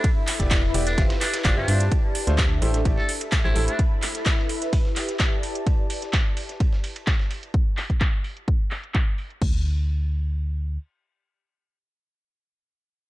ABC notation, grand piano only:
X:1
M:4/4
L:1/16
Q:1/4=128
K:Gmix
V:1 name="Grand piano"
z3 [B,EGd] z2 [B,EGd] z [CFGe] z3 [CFGd] [CFGe] [CFGe] z | z3 [A,DFc] z2 [A,EGc] z [A,EGd] z4 [A,EGc] [A,EGc] z | z16 | z16 |
z16 | z16 | z16 |]